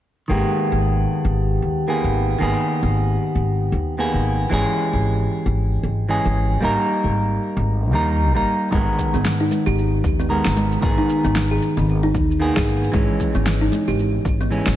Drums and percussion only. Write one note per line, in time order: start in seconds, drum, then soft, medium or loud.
8.72 kick loud
8.72 shaker soft
8.99 kick medium
8.99 shaker medium
9.15 shaker soft
9.25 snare medium
9.25 shaker soft
9.52 shaker medium
9.67 shaker soft
9.78 shaker soft
10.04 kick medium
10.04 shaker medium
10.20 shaker soft
10.31 shaker soft
10.45 snare medium
10.57 shaker medium
10.72 shaker soft
10.83 kick loud
10.83 shaker soft
11.10 shaker medium
11.25 shaker soft
11.36 snare medium
11.36 shaker soft
11.62 shaker medium
11.78 shaker soft
11.89 shaker soft
12.15 kick medium
12.15 shaker medium
12.31 shaker soft
12.42 shaker soft
12.56 kick medium
12.56 snare medium
12.68 shaker medium
12.84 shaker soft
12.94 kick loud
12.94 shaker soft
13.20 kick medium
13.20 shaker medium
13.36 shaker soft
13.46 snare medium
13.46 shaker soft
13.73 shaker medium
13.88 shaker soft
13.99 shaker soft
14.25 kick medium
14.25 shaker medium
14.41 shaker soft
14.52 shaker soft
14.66 snare medium